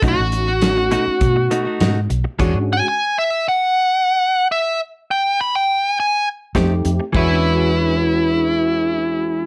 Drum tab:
CC |--------|x-------|--------|x-------|
HH |xxxxxxxx|x-------|------xx|--------|
SD |--o---o-|--------|------o-|--------|
BD |o---o---|o-------|------o-|o-------|